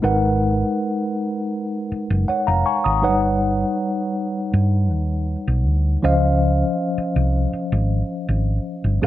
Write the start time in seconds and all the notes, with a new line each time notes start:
0.02 G#1 G#3 D#4 A#4 B4 F#5
1.92 muted fingered electric bass stroke
2.10 F#1
2.28 C#5 F#5, muted fingered electric bass stroke
2.47 F1 F5 A#5
2.66 G#5 C#6
2.84 G#1 A#5 D#6
3.02 G1 F#3 D#4 B4 C#5 F#5
3.09 G3
4.54 G2
4.91 D#2
5.48 B1
5.67 D2
6.03 C#2 F3 C#4 C5 D#5 F5
6.98 muted fingered electric bass stroke
7.16 C2
7.53 muted fingered electric bass stroke
7.72 G#1
8.29 G#1
8.84 G1
9.02 F#1 F#3 C#4 G#4 A#4